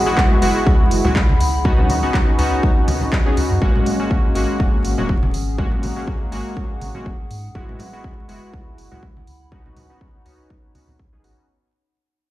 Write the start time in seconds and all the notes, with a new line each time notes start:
Already playing: C#4 E4 G#4 F#5
0.06 G#3 B3 E4 F#4
0.17 kick, clap
0.41 F#1 G#3 B3 E4 F#4, open hi-hat
0.58 B5
0.67 C#2, kick
0.91 F#1, open hi-hat
1.04 C#2 G#3 B3 E4 F#4, low conga
1.16 kick, clap
1.29 high conga
1.40 C#2, open hi-hat
1.65 B3 C#4 D#4 F#4, kick
1.78 low conga
1.89 open hi-hat, high conga, low conga
2.03 B3 C#4 D#4 F#4
2.14 kick, clap
2.23 F#4
2.38 C#2 B3 C#4 D#4 F#4 D#5, open hi-hat
2.63 kick
2.88 C#2 B3 C#4 D#4 F#4, open hi-hat, high conga
3.01 low conga
3.12 kick, clap
3.26 B3 C#4 D#4 G#4
3.37 C#2 B3 C#4 D#4 F#4, open hi-hat
3.50 F#2
3.61 G#1 G#3 A#3 C#4 F#4, kick
3.76 G#4, low conga
3.86 open hi-hat, low conga
3.99 G#3 A#3 C#4 F#4
4.11 kick
4.35 G#1 G#3 A#3 C#4 F#4, open hi-hat
4.60 D#1, kick
4.77 F#5
4.85 G#1, open hi-hat
4.98 D#1 G#3 A#3 C#4 F#4, low conga
5.09 kick
5.23 high conga
5.34 G#1 A#5, open hi-hat
5.58 G#3 A#3 C#4 F#4, kick
5.71 low conga
5.83 open hi-hat, high conga, low conga
5.96 G#3 A#3 C#4 F#4
6.08 kick
6.32 G#1 G#3 A#3 C#4 F#4, open hi-hat
6.57 kick
6.81 G#1, open hi-hat, high conga
6.94 G#3 A#3 C#4 F#4, low conga
7.06 F#1, kick
7.30 G#2, open hi-hat
7.55 F#1 G#3 B3 E4 F#4, kick
7.69 low conga
7.79 open hi-hat, low conga
7.93 G#3 B3 E4 F#4
8.04 kick
8.28 F#1 G#3 B3 E4 F#4, open hi-hat
8.45 B5
8.54 C#2, kick
8.78 F#1, open hi-hat
8.91 C#2 G#3 B3 E4 F#4, low conga
9.03 kick
9.17 high conga
9.27 C#2, open hi-hat
9.52 B3 C#4 D#4 F#4, kick
9.66 low conga
9.77 C#5, open hi-hat, high conga, low conga
9.90 B3 C#4 D#4 F#4
10.01 kick
10.25 C#2 B3 C#4 D#4 F#4, open hi-hat
10.50 kick, high conga
10.75 C#2 B3 C#4 D#4 F#4, open hi-hat, high conga
10.88 C#2, low conga
10.99 kick
11.12 B1 B3 C#4 D#4 G#4
11.24 G#1 B3 C#4 D#4 F#4, open hi-hat